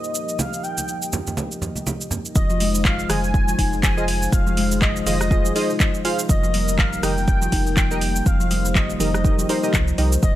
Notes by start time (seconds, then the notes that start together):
Already playing: F3 A#3 D#4 G4 A#4 D#5
0.04 shaker
0.15 shaker
0.29 shaker
0.39 F5, high conga, shaker
0.53 shaker
0.63 G5, shaker
0.78 high conga, shaker
0.88 shaker
1.02 shaker
1.13 low conga, shaker
1.27 low conga, shaker
1.37 high conga, shaker
1.52 shaker
1.62 low conga, shaker
1.76 high conga, shaker
1.87 high conga, shaker
2.01 shaker
2.11 high conga, low conga, shaker
2.25 shaker
2.35 F1 F3 G#3 D#4 F4 C5 D#5, kick, shaker
2.50 F3, shaker
2.60 G#3, open hi-hat, shaker
2.75 D#3, shaker
2.84 F3 F5, kick, clap, shaker
2.99 shaker
3.09 F1 F3 F4 G#4 C5 D#5 G#5, cross-stick, open hi-hat, mid tom, shaker
3.24 shaker
3.34 kick, shaker
3.48 F3, shaker
3.59 F1 D#4, kick, open hi-hat, shaker
3.73 C3, shaker
3.83 F3 G#5, kick, clap, shaker
3.97 F4 G#4 C5 D#5, shaker
4.08 open hi-hat, shaker
4.22 shaker
4.32 F1 F3 F5, kick, shaker
4.47 F3, shaker
4.57 G#3, open hi-hat, shaker
4.71 D#3, shaker
4.82 F3 D#5, kick, clap, shaker
4.96 shaker
5.06 F1 F3 F4 G#4 C5 D#5, open hi-hat, mid tom, shaker
5.21 cross-stick, shaker
5.31 F4 G#4 C5 D#5, kick, shaker
5.45 F3, shaker
5.56 D#4 F4 G#4 C5 D#5, open hi-hat, shaker
5.70 C3, shaker
5.80 F3, kick, clap, shaker
5.94 shaker
6.05 F4 G#4 C5 F5, open hi-hat, shaker
6.19 shaker
6.29 F1 F3 G3 A#3 A#4 D#5, kick, shaker
6.43 F3, shaker
6.54 G3, open hi-hat, shaker
6.68 D#3, shaker
6.78 F3 F5, kick, clap, shaker
6.93 shaker
7.03 F1 F3 D#4 G4 A#4 D#5 G5, cross-stick, open hi-hat, mid tom, shaker
7.17 shaker
7.28 kick, shaker
7.42 F3, shaker
7.52 F1 D#4, kick, open hi-hat, shaker
7.67 C3, shaker
7.77 F3 G5, kick, clap, shaker
7.91 D#4 G4 A#4 D#5, shaker
8.01 open hi-hat, shaker
8.16 shaker
8.26 F1 F3 C5 F5, kick, shaker
8.40 F3, shaker
8.51 G3, open hi-hat, shaker
8.65 D#3, shaker
8.75 F3 D#5, kick, clap, shaker
8.90 shaker
9.00 F1 F3 D#4 G4 A#4 D#5, open hi-hat, mid tom, shaker
9.14 cross-stick, shaker
9.24 D#4 G4 A#4 D#5, kick, shaker
9.39 F3, shaker
9.49 D#4 G4 A#4 C5, open hi-hat, shaker
9.63 C3 D#4 G4 A#4 D#5, shaker
9.74 C2 F3, kick, clap, shaker
9.88 shaker
9.98 C2 D#4 G4 A#4 D#5, open hi-hat, shaker
10.12 shaker
10.22 F1 F3 G#3 F4 D#5, kick, shaker